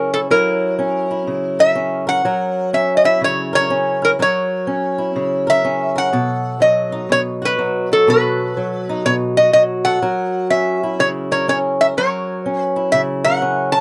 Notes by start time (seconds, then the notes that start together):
Already playing: C#3 F#3 C#4 E4 A#4
0.14 E4 A4
0.31 F#3 E4 A#4
0.79 C#4
1.11 E4
1.27 C#3
1.59 A#4 E5
1.75 C#4
2.07 A#4 F#5
2.25 F#3 A#4
2.73 C#4 E5
2.97 D#5
3.04 E4 E5
3.21 C#3 C#5
3.53 A#4 C#5
3.70 C#4
4.02 E4 A#4
4.19 F#3 A#4 C#5
4.67 C#4
4.98 E4
5.16 C#3
5.47 A#4 E5
5.65 C#4
5.96 A#4 F#5
6.13 B2 A4
6.60 F#3 D#5
6.92 D#4
7.09 B2 C#5
7.42 F#4 B4
7.59 F#3
7.92 F#4 A4
8.07 B2 A4 B4
8.57 F#3
8.89 D#4
9.05 B2 C#5
9.37 F#4 D#5
9.53 F#3 D#5
9.85 A4 F#5
10.02 F#3 A#4
10.50 C#4 E5
10.83 E4
10.99 C#3 C#5
11.31 A#4 C#5
11.48 C#4 C#5
11.81 A#4 E5
11.97 F#3 A#4 C#5
12.46 C#4
12.63 B4
12.76 E4
12.92 C#3 E5
13.24 A#4 F#5
13.42 C#4
13.72 A#4 A5